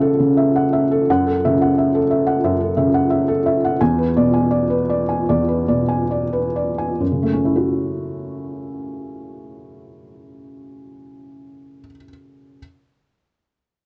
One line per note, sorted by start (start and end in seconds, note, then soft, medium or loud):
0.00 1.10 F#2 medium
0.00 0.19 C#3 soft
0.00 0.91 A4 soft
0.00 0.37 E5 soft
0.00 0.56 F#5 medium
0.19 0.47 C#3 soft
0.37 0.65 E5 soft
0.56 0.84 F#5 soft
0.73 1.01 E5 soft
0.91 1.08 A4 soft
1.10 2.40 F#2 medium
1.10 1.36 F#5 medium
1.27 1.53 A4 soft
1.45 1.98 C#3 soft
1.45 1.71 E5 soft
1.62 1.87 F#5 soft
1.78 2.04 E5 soft
1.95 2.20 A4 soft
2.11 2.37 E5 soft
2.27 2.53 F#5 soft
2.44 3.76 F#2 soft
2.44 2.71 E5 soft
2.60 2.87 A4 soft
2.77 3.31 C#3 soft
2.77 3.04 E5 soft
2.94 3.21 F#5 soft
3.10 3.37 E5 soft
3.28 3.55 A4 soft
3.46 3.73 E5 soft
3.65 3.81 F#5 soft
3.81 5.25 E2 soft
3.81 4.09 G#5 medium
3.98 4.27 B4 soft
4.17 4.75 B2 soft
4.17 4.45 D5 soft
4.34 4.63 G#5 soft
4.51 4.81 D5 soft
4.70 5.00 B4 soft
4.89 5.20 D5 soft
5.09 5.40 G#5 soft
5.29 6.97 E2 soft
5.29 5.61 D5 soft
5.49 5.81 B4 soft
5.68 6.37 B2 soft
5.68 6.02 D5 soft
5.88 6.23 G#5 soft
6.11 6.47 D5 soft
6.33 6.70 B4 soft
6.56 6.92 D5 soft
6.78 7.00 G#5 soft
7.00 11.80 F#2 soft
7.12 11.86 C#3 soft
7.23 11.92 A3 soft
7.33 11.97 C#4 soft
7.45 12.03 E4 soft
7.56 12.08 F#4 soft